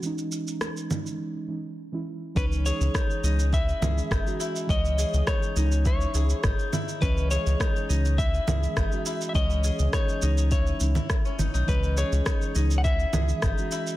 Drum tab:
SH |xxxxxxxx--------|xxxxxxxxxxxxxxxx|xxxxxxxxxxxxxxxx|xxxxxxxxxxxxxxxx|
SD |----r-----------|----r-------r---|----r-------r---|----r-------r---|
CG |------O---------|----------O-----|--------------O-|----------O-----|
BD |----------------|o---o---o---o---|o---o---o---o---|o---o---o---o---|

SH |xxxxxxxxxxxxxxxx|xxxxxxxxxxxxxxxx|
SD |----r-------r---|----r-------r---|
CG |-----------O--O-|----------O-----|
BD |o---o---o---o---|o---o---o---o---|